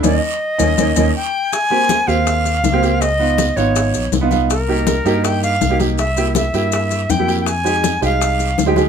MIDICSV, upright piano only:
0, 0, Header, 1, 2, 480
1, 0, Start_track
1, 0, Key_signature, -4, "major"
1, 0, Tempo, 371287
1, 54, Time_signature, 4, 2, 24, 8
1, 11490, End_track
2, 0, Start_track
2, 0, Title_t, "Upright piano"
2, 0, Program_c, 0, 0
2, 36, Note_on_c, 0, 58, 86
2, 41, Note_on_c, 0, 61, 86
2, 41, Note_on_c, 0, 63, 89
2, 197, Note_off_c, 0, 58, 0
2, 200, Note_off_c, 0, 61, 0
2, 200, Note_off_c, 0, 63, 0
2, 752, Note_on_c, 0, 58, 81
2, 754, Note_on_c, 0, 63, 92
2, 755, Note_on_c, 0, 61, 92
2, 914, Note_off_c, 0, 58, 0
2, 916, Note_off_c, 0, 61, 0
2, 916, Note_off_c, 0, 63, 0
2, 1003, Note_on_c, 0, 61, 88
2, 1003, Note_on_c, 0, 63, 86
2, 1005, Note_on_c, 0, 58, 82
2, 1161, Note_off_c, 0, 61, 0
2, 1161, Note_off_c, 0, 63, 0
2, 1162, Note_off_c, 0, 58, 0
2, 1241, Note_on_c, 0, 61, 89
2, 1242, Note_on_c, 0, 63, 84
2, 1243, Note_on_c, 0, 58, 80
2, 1400, Note_off_c, 0, 61, 0
2, 1400, Note_off_c, 0, 63, 0
2, 1401, Note_off_c, 0, 58, 0
2, 2202, Note_on_c, 0, 58, 72
2, 2203, Note_on_c, 0, 60, 66
2, 2213, Note_on_c, 0, 67, 79
2, 2543, Note_off_c, 0, 58, 0
2, 2544, Note_off_c, 0, 60, 0
2, 2549, Note_off_c, 0, 67, 0
2, 2672, Note_on_c, 0, 58, 75
2, 2682, Note_on_c, 0, 60, 65
2, 2689, Note_on_c, 0, 67, 76
2, 3271, Note_off_c, 0, 58, 0
2, 3275, Note_off_c, 0, 60, 0
2, 3279, Note_off_c, 0, 67, 0
2, 3518, Note_on_c, 0, 58, 75
2, 3530, Note_on_c, 0, 60, 72
2, 3536, Note_on_c, 0, 67, 91
2, 3609, Note_off_c, 0, 58, 0
2, 3615, Note_off_c, 0, 60, 0
2, 3619, Note_off_c, 0, 67, 0
2, 3651, Note_on_c, 0, 58, 76
2, 3659, Note_on_c, 0, 60, 71
2, 3666, Note_on_c, 0, 67, 84
2, 3892, Note_off_c, 0, 58, 0
2, 3896, Note_off_c, 0, 60, 0
2, 3899, Note_off_c, 0, 67, 0
2, 4128, Note_on_c, 0, 59, 70
2, 4137, Note_on_c, 0, 63, 65
2, 4145, Note_on_c, 0, 65, 78
2, 4466, Note_off_c, 0, 59, 0
2, 4471, Note_off_c, 0, 63, 0
2, 4475, Note_off_c, 0, 65, 0
2, 4608, Note_on_c, 0, 59, 69
2, 4616, Note_on_c, 0, 63, 68
2, 4623, Note_on_c, 0, 65, 82
2, 5198, Note_off_c, 0, 59, 0
2, 5202, Note_off_c, 0, 63, 0
2, 5206, Note_off_c, 0, 65, 0
2, 5446, Note_on_c, 0, 59, 80
2, 5454, Note_on_c, 0, 63, 72
2, 5463, Note_on_c, 0, 65, 88
2, 5533, Note_off_c, 0, 59, 0
2, 5537, Note_off_c, 0, 63, 0
2, 5542, Note_off_c, 0, 65, 0
2, 5565, Note_on_c, 0, 59, 77
2, 5574, Note_on_c, 0, 63, 74
2, 5581, Note_on_c, 0, 65, 87
2, 5808, Note_off_c, 0, 59, 0
2, 5813, Note_off_c, 0, 63, 0
2, 5817, Note_off_c, 0, 65, 0
2, 6053, Note_on_c, 0, 58, 75
2, 6061, Note_on_c, 0, 63, 66
2, 6069, Note_on_c, 0, 67, 81
2, 6389, Note_off_c, 0, 58, 0
2, 6392, Note_off_c, 0, 63, 0
2, 6396, Note_off_c, 0, 67, 0
2, 6531, Note_on_c, 0, 58, 89
2, 6535, Note_on_c, 0, 63, 81
2, 6548, Note_on_c, 0, 67, 91
2, 7120, Note_off_c, 0, 58, 0
2, 7122, Note_off_c, 0, 63, 0
2, 7128, Note_off_c, 0, 67, 0
2, 7366, Note_on_c, 0, 58, 72
2, 7376, Note_on_c, 0, 63, 64
2, 7383, Note_on_c, 0, 67, 75
2, 7453, Note_off_c, 0, 58, 0
2, 7458, Note_off_c, 0, 63, 0
2, 7461, Note_off_c, 0, 67, 0
2, 7486, Note_on_c, 0, 58, 65
2, 7496, Note_on_c, 0, 63, 60
2, 7503, Note_on_c, 0, 67, 71
2, 7729, Note_off_c, 0, 58, 0
2, 7734, Note_off_c, 0, 63, 0
2, 7738, Note_off_c, 0, 67, 0
2, 7971, Note_on_c, 0, 58, 69
2, 7981, Note_on_c, 0, 64, 64
2, 7990, Note_on_c, 0, 67, 85
2, 8308, Note_off_c, 0, 58, 0
2, 8313, Note_off_c, 0, 64, 0
2, 8317, Note_off_c, 0, 67, 0
2, 8453, Note_on_c, 0, 58, 74
2, 8456, Note_on_c, 0, 64, 64
2, 8469, Note_on_c, 0, 67, 81
2, 9041, Note_off_c, 0, 58, 0
2, 9043, Note_off_c, 0, 64, 0
2, 9049, Note_off_c, 0, 67, 0
2, 9287, Note_on_c, 0, 58, 69
2, 9298, Note_on_c, 0, 64, 59
2, 9300, Note_on_c, 0, 67, 74
2, 9374, Note_off_c, 0, 58, 0
2, 9379, Note_off_c, 0, 64, 0
2, 9380, Note_off_c, 0, 67, 0
2, 9409, Note_on_c, 0, 58, 65
2, 9412, Note_on_c, 0, 64, 59
2, 9419, Note_on_c, 0, 67, 69
2, 9651, Note_off_c, 0, 58, 0
2, 9653, Note_off_c, 0, 64, 0
2, 9656, Note_off_c, 0, 67, 0
2, 9880, Note_on_c, 0, 56, 71
2, 9891, Note_on_c, 0, 63, 65
2, 9896, Note_on_c, 0, 67, 78
2, 10223, Note_off_c, 0, 56, 0
2, 10229, Note_off_c, 0, 63, 0
2, 10231, Note_off_c, 0, 67, 0
2, 10359, Note_on_c, 0, 56, 69
2, 10369, Note_on_c, 0, 63, 69
2, 10374, Note_on_c, 0, 67, 80
2, 10955, Note_off_c, 0, 56, 0
2, 10960, Note_off_c, 0, 63, 0
2, 10962, Note_off_c, 0, 67, 0
2, 11198, Note_on_c, 0, 56, 79
2, 11203, Note_on_c, 0, 63, 76
2, 11216, Note_on_c, 0, 67, 93
2, 11290, Note_off_c, 0, 56, 0
2, 11293, Note_off_c, 0, 63, 0
2, 11299, Note_off_c, 0, 67, 0
2, 11323, Note_on_c, 0, 56, 75
2, 11331, Note_on_c, 0, 63, 68
2, 11340, Note_on_c, 0, 67, 88
2, 11490, Note_off_c, 0, 56, 0
2, 11490, Note_off_c, 0, 63, 0
2, 11490, Note_off_c, 0, 67, 0
2, 11490, End_track
0, 0, End_of_file